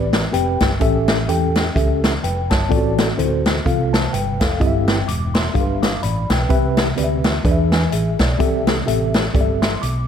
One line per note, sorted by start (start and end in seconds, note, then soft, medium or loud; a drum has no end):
0.00 0.26 A1 medium
0.00 0.23 C4 medium
0.00 0.23 G4 medium
0.00 0.23 B4 medium
0.00 0.23 D5 medium
0.13 snare loud
0.13 closed hi-hat medium
0.33 0.57 F1 medium
0.33 0.70 C4 medium
0.33 0.70 G4 medium
0.33 0.70 B4 medium
0.33 0.70 G5 medium
0.33 closed hi-hat medium
0.60 0.78 G1 medium
0.60 kick medium
0.60 snare medium
0.60 closed hi-hat medium
0.80 1.29 A1 loud
0.80 1.52 A2 medium
0.80 1.17 C#4 medium
0.80 1.17 G4 medium
0.80 1.18 A4 medium
0.80 1.18 E5 loud
0.80 kick medium
0.80 closed hi-hat medium
1.08 snare loud
1.08 closed hi-hat medium
1.28 1.69 E2 medium
1.28 1.65 C#4 medium
1.28 1.65 G4 medium
1.28 1.65 A4 medium
1.28 1.65 G5 medium
1.28 closed hi-hat medium
1.55 snare loud
1.55 closed hi-hat medium
1.75 2.16 C#2 medium
1.75 2.12 C#4 medium
1.75 2.12 G4 medium
1.75 2.13 A4 medium
1.75 2.13 E5 medium
1.75 kick loud
1.75 closed hi-hat medium
2.04 snare loud
2.04 closed hi-hat medium
2.23 2.51 F1 loud
2.23 2.50 B4 medium
2.23 2.50 G5 medium
2.23 closed hi-hat medium
2.50 2.68 G1 medium
2.50 2.96 C#5 medium
2.50 2.96 A5 medium
2.50 kick medium
2.50 snare loud
2.50 closed hi-hat medium
2.69 3.12 A1 medium
2.69 3.41 A2 medium
2.69 3.07 C4 loud
2.69 2.77 F4 medium
2.69 3.07 A4 medium
2.69 3.08 D5 loud
2.69 kick loud
2.69 closed hi-hat medium
2.76 3.10 F#4 medium
2.98 snare loud
2.98 closed hi-hat medium
3.17 3.59 D2 medium
3.17 3.55 C4 medium
3.17 3.25 E4 medium
3.17 3.55 A4 medium
3.17 3.55 C5 medium
3.17 closed hi-hat medium
3.23 3.57 F#4 medium
3.46 snare loud
3.46 closed hi-hat medium
3.65 4.06 C2 loud
3.65 4.37 C3 medium
3.65 4.02 C4 medium
3.65 4.02 F4 medium
3.65 3.93 A4 medium
3.65 3.93 F5 medium
3.65 kick loud
3.65 closed hi-hat medium
3.93 4.13 C5 soft
3.93 4.12 A5 medium
3.93 snare loud
3.93 closed hi-hat medium
4.13 4.41 G1 medium
4.13 4.39 B4 medium
4.13 4.39 G5 medium
4.13 closed hi-hat medium
4.40 4.58 F1 medium
4.40 4.86 A4 medium
4.40 4.86 F5 medium
4.40 kick medium
4.40 snare medium
4.40 closed hi-hat medium
4.60 5.01 G1 loud
4.60 5.31 G2 medium
4.60 4.97 C4 loud
4.60 4.97 E4 medium
4.60 4.97 G4 medium
4.60 4.67 D#5 medium
4.60 kick loud
4.60 closed hi-hat medium
4.67 4.91 E5 loud
4.88 5.07 B4 soft
4.88 5.07 G5 medium
4.88 snare loud
4.88 closed hi-hat medium
5.08 5.49 E1 medium
5.08 5.34 D6 medium
5.08 closed hi-hat medium
5.34 5.80 E5 soft
5.34 5.80 C6 medium
5.34 snare loud
5.34 closed hi-hat medium
5.54 5.96 G1 medium
5.54 6.26 G2 medium
5.54 5.91 D4 medium
5.54 5.91 G4 medium
5.54 5.62 A4 medium
5.54 5.82 F5 medium
5.54 kick loud
5.54 closed hi-hat medium
5.60 5.85 B4 medium
5.82 6.02 F5 soft
5.82 6.02 D6 medium
5.82 snare loud
5.82 closed hi-hat medium
6.03 6.27 A1 medium
6.03 6.29 D5 medium
6.03 6.29 B5 medium
6.03 closed hi-hat medium
6.30 6.47 B1 medium
6.30 6.49 B4 medium
6.30 6.75 G5 medium
6.30 kick medium
6.30 snare loud
6.30 closed hi-hat medium
6.49 6.91 C2 loud
6.49 7.21 C3 medium
6.49 6.86 C4 medium
6.49 6.87 G4 medium
6.49 6.87 B4 medium
6.49 6.87 E5 loud
6.49 kick loud
6.49 closed hi-hat medium
6.77 snare loud
6.77 closed hi-hat medium
6.97 7.38 D2 medium
6.97 7.34 C4 medium
6.97 7.34 G4 medium
6.97 7.34 B4 medium
6.97 7.05 D5 medium
6.97 closed hi-hat medium
7.04 7.37 E5 medium
7.24 snare loud
7.24 closed hi-hat medium
7.44 7.85 E2 loud
7.44 8.16 E3 medium
7.44 7.81 D4 medium
7.44 7.72 G#4 medium
7.44 7.71 B4 medium
7.44 7.52 D5 medium
7.44 kick loud
7.44 closed hi-hat medium
7.51 7.76 E5 medium
7.72 7.92 B4 medium
7.72 7.91 G#5 medium
7.72 snare medium
7.72 closed hi-hat medium
7.92 8.16 A1 medium
7.92 8.19 G#4 medium
7.92 8.18 E5 medium
7.92 closed hi-hat medium
8.19 8.37 B1 medium
8.19 8.65 D5 medium
8.19 kick medium
8.19 snare medium
8.19 closed hi-hat medium
8.39 8.80 C2 medium
8.39 9.11 C3 medium
8.39 8.76 C4 medium
8.39 8.76 G4 medium
8.39 8.77 A4 medium
8.39 8.77 E5 loud
8.39 kick loud
8.39 closed hi-hat medium
8.67 snare loud
8.67 closed hi-hat medium
8.86 9.28 A1 medium
8.86 9.23 C4 medium
8.86 9.24 G4 medium
8.86 9.24 A4 medium
8.86 9.24 E5 medium
8.86 closed hi-hat medium
9.14 snare loud
9.14 closed hi-hat medium
9.34 9.75 G1 medium
9.34 9.71 C4 medium
9.34 9.71 G4 medium
9.34 9.71 A4 medium
9.34 9.42 D5 medium
9.34 kick loud
9.34 closed hi-hat medium
9.41 9.61 E5 medium
9.62 9.82 E5 soft
9.62 9.81 C6 medium
9.62 snare loud
9.62 closed hi-hat medium
9.82 10.06 B1 medium
9.82 10.08 D6 medium
9.82 closed hi-hat medium